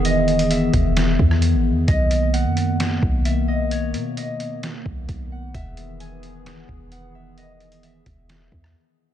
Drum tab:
HH |x-xxx-x-x---x---|x-x-x-x-x---x---|x-x-x-x-x---x---|x-x-x-x-x---x---|
SD |--------o--r----|--------o-------|--------o-------|--------o-------|
BD |------o---o-----|o---------o-----|----------o-o---|o---------o-----|

HH |x-xxx-x-x-------|
SD |--------o--r----|
BD |------o---o-----|